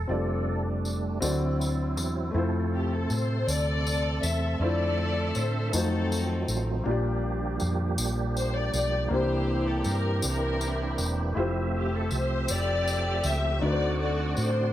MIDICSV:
0, 0, Header, 1, 6, 480
1, 0, Start_track
1, 0, Key_signature, -1, "major"
1, 0, Tempo, 750939
1, 64, Time_signature, 6, 3, 24, 8
1, 9414, End_track
2, 0, Start_track
2, 0, Title_t, "String section"
2, 0, Program_c, 0, 48
2, 1754, Note_on_c, 0, 67, 76
2, 1860, Note_off_c, 0, 67, 0
2, 1877, Note_on_c, 0, 69, 84
2, 1989, Note_off_c, 0, 69, 0
2, 2006, Note_on_c, 0, 72, 102
2, 2227, Note_on_c, 0, 69, 80
2, 2234, Note_off_c, 0, 72, 0
2, 2236, Note_on_c, 0, 74, 123
2, 2708, Note_on_c, 0, 76, 103
2, 2709, Note_off_c, 0, 74, 0
2, 2918, Note_off_c, 0, 69, 0
2, 2945, Note_off_c, 0, 76, 0
2, 2949, Note_on_c, 0, 69, 88
2, 2954, Note_on_c, 0, 74, 114
2, 3428, Note_off_c, 0, 74, 0
2, 3440, Note_on_c, 0, 72, 100
2, 3640, Note_off_c, 0, 69, 0
2, 3666, Note_on_c, 0, 69, 98
2, 3671, Note_off_c, 0, 72, 0
2, 3671, Note_on_c, 0, 60, 71
2, 3673, Note_on_c, 0, 63, 64
2, 4204, Note_off_c, 0, 69, 0
2, 4361, Note_off_c, 0, 60, 0
2, 4362, Note_off_c, 0, 63, 0
2, 5356, Note_on_c, 0, 72, 98
2, 5461, Note_off_c, 0, 72, 0
2, 5467, Note_on_c, 0, 74, 108
2, 5585, Note_off_c, 0, 74, 0
2, 5595, Note_on_c, 0, 74, 110
2, 5813, Note_off_c, 0, 74, 0
2, 5847, Note_on_c, 0, 72, 107
2, 5848, Note_on_c, 0, 64, 80
2, 5849, Note_on_c, 0, 67, 82
2, 6171, Note_off_c, 0, 72, 0
2, 6193, Note_on_c, 0, 69, 88
2, 6308, Note_off_c, 0, 69, 0
2, 6322, Note_on_c, 0, 70, 105
2, 6531, Note_off_c, 0, 64, 0
2, 6531, Note_off_c, 0, 67, 0
2, 6553, Note_off_c, 0, 70, 0
2, 6569, Note_on_c, 0, 62, 70
2, 6571, Note_on_c, 0, 64, 71
2, 6575, Note_on_c, 0, 70, 100
2, 7075, Note_off_c, 0, 70, 0
2, 7252, Note_off_c, 0, 62, 0
2, 7253, Note_off_c, 0, 64, 0
2, 7522, Note_on_c, 0, 67, 74
2, 7626, Note_off_c, 0, 67, 0
2, 7636, Note_on_c, 0, 69, 82
2, 7751, Note_off_c, 0, 69, 0
2, 7767, Note_on_c, 0, 72, 104
2, 7981, Note_off_c, 0, 72, 0
2, 7998, Note_on_c, 0, 67, 92
2, 8000, Note_on_c, 0, 74, 127
2, 8002, Note_on_c, 0, 69, 90
2, 8474, Note_off_c, 0, 74, 0
2, 8483, Note_on_c, 0, 76, 106
2, 8687, Note_off_c, 0, 67, 0
2, 8689, Note_off_c, 0, 69, 0
2, 8712, Note_on_c, 0, 66, 95
2, 8713, Note_on_c, 0, 69, 88
2, 8715, Note_off_c, 0, 76, 0
2, 8718, Note_on_c, 0, 74, 110
2, 8951, Note_off_c, 0, 74, 0
2, 8959, Note_on_c, 0, 74, 84
2, 9177, Note_off_c, 0, 74, 0
2, 9211, Note_on_c, 0, 72, 99
2, 9405, Note_off_c, 0, 66, 0
2, 9405, Note_off_c, 0, 69, 0
2, 9414, Note_off_c, 0, 72, 0
2, 9414, End_track
3, 0, Start_track
3, 0, Title_t, "Grand piano"
3, 0, Program_c, 1, 0
3, 0, Control_c, 1, 64, 127
3, 49, Note_on_c, 1, 60, 62
3, 56, Note_on_c, 1, 65, 53
3, 62, Note_on_c, 1, 67, 47
3, 70, Note_on_c, 1, 74, 66
3, 72, Control_c, 1, 64, 0
3, 104, Note_off_c, 1, 67, 0
3, 108, Note_on_c, 1, 69, 53
3, 192, Control_c, 1, 64, 127
3, 761, Note_off_c, 1, 60, 0
3, 770, Note_on_c, 1, 60, 82
3, 773, Note_off_c, 1, 69, 0
3, 776, Note_on_c, 1, 66, 68
3, 777, Note_on_c, 1, 50, 75
3, 779, Note_off_c, 1, 65, 0
3, 782, Note_on_c, 1, 69, 76
3, 784, Note_off_c, 1, 74, 0
3, 790, Control_c, 1, 64, 0
3, 793, Note_on_c, 1, 74, 77
3, 898, Control_c, 1, 64, 127
3, 1474, Note_off_c, 1, 50, 0
3, 1474, Note_on_c, 1, 57, 66
3, 1480, Note_off_c, 1, 60, 0
3, 1489, Note_on_c, 1, 60, 62
3, 1497, Note_on_c, 1, 64, 71
3, 1499, Note_off_c, 1, 66, 0
3, 1502, Note_off_c, 1, 69, 0
3, 1507, Note_off_c, 1, 74, 0
3, 1511, Control_c, 1, 64, 0
3, 1513, Note_on_c, 1, 65, 65
3, 1521, Note_on_c, 1, 72, 82
3, 1623, Control_c, 1, 64, 127
3, 2902, Note_off_c, 1, 57, 0
3, 2909, Note_off_c, 1, 60, 0
3, 2914, Note_off_c, 1, 64, 0
3, 2921, Note_off_c, 1, 65, 0
3, 2925, Note_off_c, 1, 72, 0
3, 2941, Note_on_c, 1, 57, 59
3, 2947, Note_on_c, 1, 62, 56
3, 2951, Control_c, 1, 64, 0
3, 2952, Note_on_c, 1, 64, 65
3, 2957, Note_on_c, 1, 65, 61
3, 2960, Note_on_c, 1, 72, 71
3, 3074, Control_c, 1, 64, 127
3, 3651, Note_off_c, 1, 57, 0
3, 3661, Note_on_c, 1, 57, 65
3, 3664, Note_off_c, 1, 62, 0
3, 3664, Note_off_c, 1, 65, 0
3, 3665, Note_on_c, 1, 63, 66
3, 3667, Note_off_c, 1, 64, 0
3, 3670, Control_c, 1, 64, 0
3, 3671, Note_off_c, 1, 72, 0
3, 3673, Note_on_c, 1, 65, 55
3, 3675, Note_on_c, 1, 66, 59
3, 3682, Note_on_c, 1, 72, 78
3, 3790, Control_c, 1, 64, 127
3, 4370, Note_on_c, 1, 58, 72
3, 4382, Note_off_c, 1, 57, 0
3, 4383, Note_off_c, 1, 63, 0
3, 4383, Note_off_c, 1, 65, 0
3, 4383, Note_on_c, 1, 62, 71
3, 4389, Note_off_c, 1, 66, 0
3, 4391, Control_c, 1, 64, 0
3, 4392, Note_off_c, 1, 72, 0
3, 4393, Note_on_c, 1, 65, 61
3, 4395, Note_on_c, 1, 46, 74
3, 4403, Note_on_c, 1, 67, 66
3, 4417, Note_on_c, 1, 74, 74
3, 4514, Control_c, 1, 64, 127
3, 5083, Note_off_c, 1, 46, 0
3, 5792, Note_off_c, 1, 58, 0
3, 5798, Note_off_c, 1, 62, 0
3, 5803, Note_off_c, 1, 65, 0
3, 5807, Note_on_c, 1, 58, 71
3, 5808, Note_off_c, 1, 67, 0
3, 5815, Note_off_c, 1, 74, 0
3, 5818, Note_on_c, 1, 62, 60
3, 5828, Note_on_c, 1, 48, 67
3, 5831, Note_on_c, 1, 64, 63
3, 5832, Control_c, 1, 64, 0
3, 5840, Note_on_c, 1, 67, 59
3, 5852, Note_on_c, 1, 72, 69
3, 5961, Control_c, 1, 64, 127
3, 6521, Note_off_c, 1, 48, 0
3, 7231, Note_off_c, 1, 58, 0
3, 7237, Note_off_c, 1, 62, 0
3, 7239, Note_on_c, 1, 57, 65
3, 7243, Note_off_c, 1, 64, 0
3, 7248, Note_off_c, 1, 67, 0
3, 7253, Note_on_c, 1, 64, 74
3, 7254, Note_off_c, 1, 72, 0
3, 7262, Note_on_c, 1, 65, 72
3, 7274, Control_c, 1, 64, 0
3, 7275, Note_on_c, 1, 67, 65
3, 7284, Note_on_c, 1, 72, 78
3, 7388, Control_c, 1, 64, 127
3, 8668, Note_off_c, 1, 57, 0
3, 8675, Note_off_c, 1, 64, 0
3, 8680, Note_off_c, 1, 65, 0
3, 8682, Note_on_c, 1, 57, 61
3, 8686, Note_off_c, 1, 67, 0
3, 8691, Note_off_c, 1, 72, 0
3, 8693, Note_on_c, 1, 62, 54
3, 8701, Note_on_c, 1, 63, 59
3, 8703, Note_on_c, 1, 50, 59
3, 8712, Note_on_c, 1, 66, 66
3, 8715, Control_c, 1, 64, 0
3, 8725, Note_on_c, 1, 71, 58
3, 8757, Note_off_c, 1, 71, 0
3, 8765, Note_on_c, 1, 72, 75
3, 8809, Control_c, 1, 64, 127
3, 9400, Note_off_c, 1, 50, 0
3, 9414, Note_off_c, 1, 57, 0
3, 9414, Note_off_c, 1, 62, 0
3, 9414, Note_off_c, 1, 63, 0
3, 9414, Note_off_c, 1, 66, 0
3, 9414, Note_off_c, 1, 72, 0
3, 9414, End_track
4, 0, Start_track
4, 0, Title_t, "Tonewheel organ"
4, 0, Program_c, 2, 16
4, 0, Note_on_c, 2, 69, 76
4, 72, Note_on_c, 2, 55, 61
4, 75, Note_on_c, 2, 57, 54
4, 77, Note_on_c, 2, 62, 64
4, 402, Note_off_c, 2, 69, 0
4, 761, Note_off_c, 2, 55, 0
4, 763, Note_off_c, 2, 57, 0
4, 764, Note_off_c, 2, 62, 0
4, 791, Note_on_c, 2, 54, 57
4, 794, Note_on_c, 2, 60, 51
4, 796, Note_on_c, 2, 64, 60
4, 1480, Note_off_c, 2, 54, 0
4, 1482, Note_off_c, 2, 60, 0
4, 1483, Note_off_c, 2, 64, 0
4, 1499, Note_on_c, 2, 57, 68
4, 1507, Note_on_c, 2, 60, 66
4, 1507, Note_on_c, 2, 69, 77
4, 1508, Note_on_c, 2, 48, 72
4, 2930, Note_off_c, 2, 48, 0
4, 2930, Note_off_c, 2, 69, 0
4, 2946, Note_on_c, 2, 76, 81
4, 2949, Note_on_c, 2, 50, 67
4, 3642, Note_off_c, 2, 60, 0
4, 3657, Note_off_c, 2, 76, 0
4, 3658, Note_off_c, 2, 50, 0
4, 3662, Note_on_c, 2, 60, 65
4, 3663, Note_on_c, 2, 51, 68
4, 3664, Note_on_c, 2, 53, 81
4, 3664, Note_on_c, 2, 54, 70
4, 4355, Note_off_c, 2, 57, 0
4, 4375, Note_off_c, 2, 60, 0
4, 4376, Note_off_c, 2, 51, 0
4, 4376, Note_off_c, 2, 53, 0
4, 4376, Note_off_c, 2, 54, 0
4, 4382, Note_on_c, 2, 58, 71
4, 4384, Note_on_c, 2, 55, 69
4, 4384, Note_on_c, 2, 67, 83
4, 4385, Note_on_c, 2, 53, 84
4, 4385, Note_on_c, 2, 62, 66
4, 5809, Note_off_c, 2, 58, 0
4, 5810, Note_off_c, 2, 53, 0
4, 5810, Note_off_c, 2, 55, 0
4, 5810, Note_off_c, 2, 67, 0
4, 5820, Note_on_c, 2, 58, 63
4, 5820, Note_on_c, 2, 60, 73
4, 5822, Note_on_c, 2, 52, 76
4, 5824, Note_on_c, 2, 67, 83
4, 7241, Note_off_c, 2, 62, 0
4, 7249, Note_off_c, 2, 58, 0
4, 7249, Note_off_c, 2, 60, 0
4, 7250, Note_off_c, 2, 52, 0
4, 7268, Note_on_c, 2, 60, 72
4, 7268, Note_on_c, 2, 76, 69
4, 7271, Note_on_c, 2, 53, 77
4, 7275, Note_on_c, 2, 57, 68
4, 8682, Note_off_c, 2, 67, 0
4, 8694, Note_off_c, 2, 76, 0
4, 8695, Note_off_c, 2, 53, 0
4, 8714, Note_on_c, 2, 50, 78
4, 8714, Note_on_c, 2, 66, 84
4, 8714, Note_on_c, 2, 74, 62
4, 9414, Note_off_c, 2, 50, 0
4, 9414, Note_off_c, 2, 57, 0
4, 9414, Note_off_c, 2, 60, 0
4, 9414, Note_off_c, 2, 66, 0
4, 9414, Note_off_c, 2, 74, 0
4, 9414, End_track
5, 0, Start_track
5, 0, Title_t, "Fingered electric bass"
5, 0, Program_c, 3, 33
5, 58, Note_on_c, 3, 29, 110
5, 754, Note_off_c, 3, 29, 0
5, 779, Note_on_c, 3, 38, 101
5, 1258, Note_off_c, 3, 38, 0
5, 1258, Note_on_c, 3, 40, 91
5, 1481, Note_off_c, 3, 40, 0
5, 1499, Note_on_c, 3, 41, 106
5, 1955, Note_off_c, 3, 41, 0
5, 1983, Note_on_c, 3, 45, 92
5, 2203, Note_off_c, 3, 45, 0
5, 2221, Note_on_c, 3, 38, 108
5, 2675, Note_off_c, 3, 38, 0
5, 2703, Note_on_c, 3, 40, 93
5, 2923, Note_off_c, 3, 40, 0
5, 2938, Note_on_c, 3, 41, 94
5, 3394, Note_off_c, 3, 41, 0
5, 3426, Note_on_c, 3, 45, 95
5, 3645, Note_off_c, 3, 45, 0
5, 3666, Note_on_c, 3, 41, 108
5, 4118, Note_off_c, 3, 41, 0
5, 4144, Note_on_c, 3, 33, 99
5, 4364, Note_off_c, 3, 33, 0
5, 4384, Note_on_c, 3, 34, 100
5, 4838, Note_off_c, 3, 34, 0
5, 4869, Note_on_c, 3, 41, 94
5, 5087, Note_off_c, 3, 41, 0
5, 5103, Note_on_c, 3, 34, 92
5, 5558, Note_off_c, 3, 34, 0
5, 5584, Note_on_c, 3, 35, 94
5, 5805, Note_off_c, 3, 35, 0
5, 5821, Note_on_c, 3, 36, 111
5, 6277, Note_off_c, 3, 36, 0
5, 6299, Note_on_c, 3, 43, 99
5, 6522, Note_off_c, 3, 43, 0
5, 6544, Note_on_c, 3, 36, 94
5, 6999, Note_off_c, 3, 36, 0
5, 7022, Note_on_c, 3, 28, 88
5, 7244, Note_off_c, 3, 28, 0
5, 7265, Note_on_c, 3, 29, 107
5, 7720, Note_off_c, 3, 29, 0
5, 7744, Note_on_c, 3, 36, 78
5, 7966, Note_off_c, 3, 36, 0
5, 7991, Note_on_c, 3, 29, 91
5, 8443, Note_off_c, 3, 29, 0
5, 8465, Note_on_c, 3, 37, 98
5, 8687, Note_off_c, 3, 37, 0
5, 8707, Note_on_c, 3, 38, 106
5, 9162, Note_off_c, 3, 38, 0
5, 9189, Note_on_c, 3, 45, 91
5, 9410, Note_off_c, 3, 45, 0
5, 9414, End_track
6, 0, Start_track
6, 0, Title_t, "Drums"
6, 544, Note_on_c, 9, 54, 46
6, 608, Note_off_c, 9, 54, 0
6, 780, Note_on_c, 9, 54, 87
6, 844, Note_off_c, 9, 54, 0
6, 1031, Note_on_c, 9, 54, 55
6, 1095, Note_off_c, 9, 54, 0
6, 1262, Note_on_c, 9, 54, 70
6, 1326, Note_off_c, 9, 54, 0
6, 1981, Note_on_c, 9, 54, 44
6, 2045, Note_off_c, 9, 54, 0
6, 2227, Note_on_c, 9, 54, 95
6, 2291, Note_off_c, 9, 54, 0
6, 2471, Note_on_c, 9, 54, 65
6, 2535, Note_off_c, 9, 54, 0
6, 2704, Note_on_c, 9, 54, 76
6, 2768, Note_off_c, 9, 54, 0
6, 3419, Note_on_c, 9, 54, 56
6, 3483, Note_off_c, 9, 54, 0
6, 3664, Note_on_c, 9, 54, 88
6, 3727, Note_off_c, 9, 54, 0
6, 3912, Note_on_c, 9, 54, 62
6, 3976, Note_off_c, 9, 54, 0
6, 4144, Note_on_c, 9, 54, 69
6, 4208, Note_off_c, 9, 54, 0
6, 4856, Note_on_c, 9, 54, 49
6, 4920, Note_off_c, 9, 54, 0
6, 5100, Note_on_c, 9, 54, 94
6, 5164, Note_off_c, 9, 54, 0
6, 5348, Note_on_c, 9, 54, 62
6, 5412, Note_off_c, 9, 54, 0
6, 5584, Note_on_c, 9, 54, 71
6, 5648, Note_off_c, 9, 54, 0
6, 6292, Note_on_c, 9, 54, 49
6, 6356, Note_off_c, 9, 54, 0
6, 6535, Note_on_c, 9, 54, 88
6, 6599, Note_off_c, 9, 54, 0
6, 6781, Note_on_c, 9, 54, 66
6, 6845, Note_off_c, 9, 54, 0
6, 7019, Note_on_c, 9, 54, 64
6, 7083, Note_off_c, 9, 54, 0
6, 7738, Note_on_c, 9, 54, 46
6, 7802, Note_off_c, 9, 54, 0
6, 7979, Note_on_c, 9, 54, 94
6, 8043, Note_off_c, 9, 54, 0
6, 8229, Note_on_c, 9, 54, 68
6, 8293, Note_off_c, 9, 54, 0
6, 8460, Note_on_c, 9, 54, 67
6, 8524, Note_off_c, 9, 54, 0
6, 9183, Note_on_c, 9, 54, 48
6, 9247, Note_off_c, 9, 54, 0
6, 9414, End_track
0, 0, End_of_file